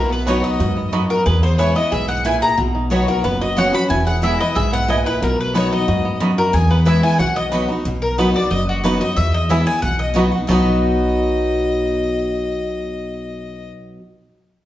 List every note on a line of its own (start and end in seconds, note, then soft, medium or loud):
0.00 0.40 B1 medium
0.00 0.57 B2 loud
0.00 0.40 F#4 medium
0.00 0.10 A#4 medium
0.00 0.11 A#4 medium
0.00 0.26 B4 soft
0.10 0.76 B3 medium
0.10 0.26 B4 medium
0.10 0.27 B4 medium
0.27 0.58 F#3 medium
0.27 0.36 B3 medium
0.27 0.59 B3 medium
0.27 0.59 D#4 medium
0.27 0.36 F#4 medium
0.27 0.60 F#4 medium
0.27 1.58 B4 medium
0.27 0.43 C#5 medium
0.27 0.37 D#5 medium
0.27 0.37 B5 medium
0.43 0.89 D#4 medium
0.43 0.90 D#5 medium
0.60 1.06 F#2 medium
0.60 0.92 G#2 medium
0.60 1.06 F#4 medium
0.77 1.43 B3 medium
0.92 1.24 F#2 medium
0.92 1.02 B3 medium
0.92 1.26 D#4 medium
0.92 1.02 F#4 loud
0.92 1.02 D#5 medium
0.92 1.02 B5 loud
1.09 1.26 F#4 medium
1.09 1.25 A#4 medium
1.26 1.89 E2 medium
1.26 1.72 E2 medium
1.26 1.73 G#4 medium
1.26 1.42 B4 medium
1.43 2.08 B3 medium
1.43 1.59 C5 medium
1.43 1.58 C5 medium
1.58 1.75 E3 medium
1.58 1.75 G#3 medium
1.58 1.68 B3 medium
1.58 1.76 B3 medium
1.58 1.69 E4 medium
1.58 1.74 E4 medium
1.58 2.99 B4 medium
1.58 1.69 B4 medium
1.58 1.75 C#5 medium
1.58 1.69 G#5 medium
1.75 1.92 B3 soft
1.75 1.91 E4 medium
1.75 2.22 E4 medium
1.75 1.92 D#5 loud
1.75 1.91 D#5 medium
1.92 2.38 B1 medium
1.92 2.24 G#2 medium
1.92 2.38 G#4 medium
1.92 2.08 E5 medium
2.08 2.91 B3 medium
2.08 2.24 F#5 medium
2.25 2.56 A#2 medium
2.25 2.34 B3 medium
2.25 2.58 E4 medium
2.25 2.35 E4 medium
2.25 2.35 B4 loud
2.25 2.41 G#5 medium
2.25 2.42 G#5 medium
2.25 2.35 G#5 loud
2.42 2.57 G#4 medium
2.42 2.58 A#5 medium
2.58 3.04 B1 medium
2.58 3.21 B2 medium
2.58 3.05 F#4 medium
2.75 3.21 D#4 medium
2.90 3.22 F#3 medium
2.90 3.22 B3 medium
2.90 3.00 B3 medium
2.90 3.24 B3 medium
2.90 3.23 D#4 medium
2.90 3.01 F#4 medium
2.90 3.23 F#4 medium
2.90 3.08 C#5 medium
2.90 3.07 C#5 medium
2.90 3.01 D#5 medium
2.90 3.01 B5 medium
3.08 3.24 F#4 medium
3.08 3.24 A#4 medium
3.08 3.23 A#4 medium
3.24 3.70 F#1 medium
3.24 3.87 F#2 medium
3.24 3.57 B3 medium
3.24 3.40 B4 medium
3.24 3.41 B4 medium
3.41 3.87 F#4 medium
3.41 3.57 D#5 medium
3.41 3.56 D#5 medium
3.57 3.73 F#3 medium
3.57 3.66 B3 medium
3.57 4.23 B3 medium
3.57 3.74 B3 medium
3.57 3.74 C#4 loud
3.57 3.67 F#4 medium
3.57 3.72 F#4 loud
3.57 3.67 C#5 medium
3.57 3.73 F#5 medium
3.57 3.67 F#5 loud
3.57 3.74 F#5 medium
3.73 3.90 C#4 soft
3.73 3.89 F#4 medium
3.73 4.40 B4 medium
3.73 3.89 B5 medium
3.73 3.89 B5 loud
3.90 4.36 E1 medium
3.90 4.53 E2 medium
3.90 4.37 E4 medium
3.90 4.06 G#5 medium
4.07 4.53 G#4 medium
4.07 4.22 F#5 medium
4.07 4.23 F#5 medium
4.22 4.39 E3 medium
4.22 4.39 G#3 medium
4.22 4.32 B3 medium
4.22 4.72 B3 medium
4.22 4.40 B3 medium
4.22 4.33 E4 medium
4.22 4.38 E4 medium
4.22 4.33 B4 medium
4.22 4.39 E5 medium
4.22 4.40 E5 medium
4.22 4.33 G#5 loud
4.39 4.56 B3 soft
4.39 4.55 E4 medium
4.39 4.88 B4 medium
4.39 4.55 D#5 medium
4.39 4.56 D#5 medium
4.55 5.02 B1 medium
4.55 4.88 G#2 medium
4.55 5.03 G#4 medium
4.55 4.72 E5 medium
4.73 6.05 B3 medium
4.73 4.88 F#5 medium
4.73 4.89 F#5 loud
4.88 5.20 A#2 medium
4.88 4.98 B3 medium
4.88 4.98 E4 medium
4.88 5.55 B4 medium
4.88 4.98 B4 medium
4.88 5.05 D#5 medium
4.88 5.06 D#5 medium
4.88 4.99 G#5 medium
5.06 5.22 E4 medium
5.06 5.21 B4 medium
5.06 5.22 B4 medium
5.22 5.68 B1 medium
5.22 5.85 B2 loud
5.22 5.69 F#4 medium
5.22 5.38 A#4 medium
5.22 5.39 A#4 medium
5.38 5.54 B4 medium
5.38 5.55 B4 medium
5.54 5.86 F#3 medium
5.54 5.64 B3 medium
5.54 5.87 B3 medium
5.54 5.87 D#4 medium
5.54 5.64 F#4 medium
5.54 5.87 F#4 loud
5.54 6.86 B4 medium
5.54 5.71 C#5 medium
5.54 5.72 C#5 medium
5.54 5.64 D#5 medium
5.54 5.64 B5 loud
5.72 6.18 D#4 medium
5.72 6.18 D#5 medium
5.88 6.34 F#2 medium
5.88 6.19 G#2 medium
5.88 6.35 F#4 medium
6.05 6.70 B3 medium
6.20 6.52 F#2 loud
6.20 6.30 B3 loud
6.20 6.54 D#4 medium
6.20 6.30 F#4 medium
6.20 6.30 D#5 loud
6.20 6.31 B5 loud
6.38 6.54 F#4 medium
6.38 6.54 A#4 medium
6.38 6.53 A#4 medium
6.53 7.16 E2 medium
6.53 7.00 E2 loud
6.53 7.00 G#4 medium
6.53 6.70 G#5 medium
6.71 7.17 B3 medium
6.71 6.86 B4 medium
6.85 7.17 E3 medium
6.85 7.18 G#3 medium
6.85 6.96 B3 medium
6.85 7.18 B3 medium
6.85 6.96 E4 medium
6.85 7.19 E4 loud
6.85 7.20 B4 medium
6.85 6.96 B4 medium
6.85 7.03 E5 medium
6.85 6.96 G#5 medium
7.03 7.20 E4 medium
7.03 7.19 G#5 loud
7.03 7.19 G#5 medium
7.19 7.65 B1 medium
7.19 7.82 B2 medium
7.19 7.66 F#4 medium
7.19 7.36 F#5 medium
7.19 7.35 F#5 medium
7.36 7.82 B3 medium
7.36 7.46 D#5 medium
7.36 7.51 D#5 medium
7.52 7.68 F#3 medium
7.52 7.62 B3 medium
7.52 7.69 B3 medium
7.52 7.69 D#4 medium
7.52 7.62 F#4 medium
7.52 7.68 F#4 loud
7.52 7.85 B4 medium
7.52 7.62 D#5 medium
7.52 7.62 B5 loud
7.69 7.85 D#4 medium
7.69 7.86 D#4 soft
7.69 7.85 F#4 medium
7.85 8.31 B1 medium
7.85 8.48 B2 medium
8.02 8.18 A#4 medium
8.18 8.34 F#3 medium
8.18 8.28 B3 medium
8.18 8.26 B3 medium
8.18 8.35 B3 medium
8.18 8.26 D#4 medium
8.18 8.35 D#4 medium
8.18 8.28 F#4 medium
8.18 8.26 F#4 medium
8.18 8.33 F#4 medium
8.18 8.35 B4 medium
8.18 8.34 B4 medium
8.18 8.28 D#5 medium
8.18 8.28 B5 loud
8.34 8.51 D#4 soft
8.34 8.50 F#4 medium
8.34 8.51 D5 medium
8.51 8.97 F#1 medium
8.51 9.14 F#2 medium
8.51 8.67 D#5 medium
8.69 8.84 F#4 medium
8.84 9.00 F#3 medium
8.84 8.93 B3 medium
8.84 9.01 B3 medium
8.84 8.92 B3 medium
8.84 9.01 D#4 medium
8.84 8.92 D#4 medium
8.84 8.93 F#4 medium
8.84 8.92 F#4 medium
8.84 8.99 F#4 loud
8.84 9.00 B4 medium
8.84 8.94 D#5 loud
8.84 8.94 B5 loud
9.00 9.17 D#4 soft
9.00 9.16 F#4 medium
9.00 9.17 D#5 medium
9.00 9.16 D#5 medium
9.16 9.63 E2 loud
9.16 9.80 E2 medium
9.16 9.33 E5 medium
9.34 9.49 D#5 medium
9.34 9.50 D#5 medium
9.49 9.66 E3 medium
9.49 9.66 G#3 medium
9.49 9.59 B3 medium
9.49 9.66 B3 medium
9.49 9.58 B3 medium
9.49 9.59 E4 medium
9.49 9.58 E4 medium
9.49 9.65 E4 medium
9.49 9.58 G#4 medium
9.49 9.60 B4 medium
9.49 9.66 E5 medium
9.49 9.60 G#5 loud
9.66 9.83 B3 soft
9.66 9.82 E4 medium
9.66 9.82 G#5 loud
9.82 10.29 B1 medium
9.82 10.45 B2 medium
9.82 9.99 F#5 medium
9.99 10.09 D#5 medium
9.99 10.15 D#5 medium
10.14 10.31 F#3 medium
10.14 10.31 B3 medium
10.14 10.25 B3 medium
10.14 10.23 B3 medium
10.14 10.32 D#4 loud
10.14 10.24 D#4 medium
10.14 10.25 F#4 loud
10.14 10.31 F#4 medium
10.14 10.24 F#4 medium
10.14 10.25 D#5 medium
10.14 10.25 B5 loud
10.32 10.49 D#4 soft
10.32 10.48 F#4 medium
10.47 13.69 B1 loud
10.47 13.97 B2 medium
10.47 13.99 F#3 medium
10.47 13.98 B3 medium
10.47 13.69 B3 medium
10.47 13.99 B3 medium
10.47 14.00 D#4 loud
10.47 13.71 D#4 medium
10.47 13.99 F#4 medium
10.47 13.69 D#5 medium
10.47 13.70 D#5 medium
10.47 14.00 D#5 medium
10.47 14.01 B5 medium
10.51 14.01 F#4 loud
10.51 13.73 F#4 medium